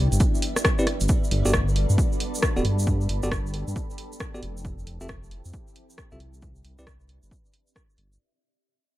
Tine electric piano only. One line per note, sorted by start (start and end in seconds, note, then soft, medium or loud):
0.79 0.84 C4 medium
0.79 0.84 E4 medium
0.79 0.84 G4 medium
0.79 0.84 B4 medium
0.79 0.84 D5 medium
1.45 1.51 B3 medium
1.45 1.51 F#4 medium
1.45 1.51 G4 medium
1.45 1.51 A4 medium
1.45 1.51 D5 medium
2.56 2.62 B3 medium
2.56 2.62 F#4 medium
2.56 2.62 G4 medium
2.56 2.62 A4 medium
2.56 2.62 D5 medium
3.23 3.29 B3 medium
3.23 3.29 F#4 medium
3.23 3.29 G4 medium
3.23 3.29 A4 medium
3.23 3.29 D5 medium
4.34 4.40 B3 medium
4.34 4.40 F#4 medium
4.34 4.40 G4 medium
4.34 4.40 A4 medium
4.34 4.40 D5 medium
5.01 5.07 C4 medium
5.01 5.07 F4 medium
5.01 5.07 G4 medium
5.01 5.07 A4 medium
5.01 5.07 E5 medium
6.12 6.18 C4 medium
6.12 6.18 F4 medium
6.12 6.18 G4 medium
6.12 6.18 A4 medium
6.12 6.18 E5 medium
6.79 6.84 C4 medium
6.79 6.84 E4 medium
6.79 6.84 G4 medium
6.79 6.84 B4 medium
6.79 6.84 D5 medium